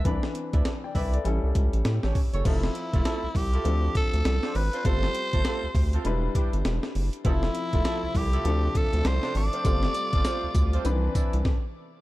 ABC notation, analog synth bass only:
X:1
M:4/4
L:1/16
Q:"Swing 16ths" 1/4=100
K:Ddor
V:1 name="Analog synth bass" clef=bass
C,, z2 D,, z2 C,,2 A,,, C,, ^C,, A,,, A,, A,,, z ^F,,, | F,,,2 z F,,, z C,, C,,2 D,,2 z D,, C,, z ^G,,, z | G,,,2 z G,,, z D,, D,,2 E,,,2 z G,,, E,,, z ^F,,, z | F,,,2 z F,,, z C,, C,,2 D,,2 z D,, C,, z ^G,,, z |
G,,,2 z G,,, z D,, D,,2 C,,2 z C,, z4 |]